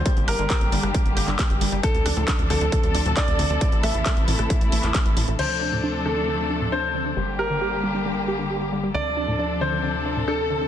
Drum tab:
CC |----------------|----------------|----------------|x---------------|
HH |xxoxxxoxxxoxxxox|xxoxxxoxxxoxxxox|xxoxxxoxxxoxxxox|----------------|
CP |----x------xx---|----x-------x---|----x------xx---|----------------|
SD |--r----r--------|--r-------------|--r----r--------|----------------|
BD |o---o---o---o---|o---o---o---o---|o---o---o---o---|----------------|

CC |----------------|----------------|
HH |----------------|----------------|
CP |----------------|----------------|
SD |----------------|----------------|
BD |----------------|----------------|